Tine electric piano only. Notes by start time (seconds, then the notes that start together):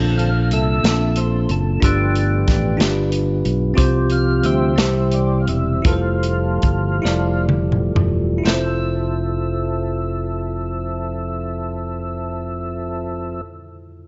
Already playing: A#2 A#3 D4 F4 A4
0.83 A#3 C4 F4
0.88 D4 A4
1.80 G2 D4 F4 G4
1.84 B4
2.77 D4 F4 G4 B4
3.74 C3 C4 F4 G4
3.78 C5
4.76 C3 C4 E4 G4 C5
5.82 E4 F4 A4
5.86 B4
5.93 C5
7.02 E4 F4 A4 D5
8.38 E4
8.44 F2 F4
8.49 A4
8.54 C5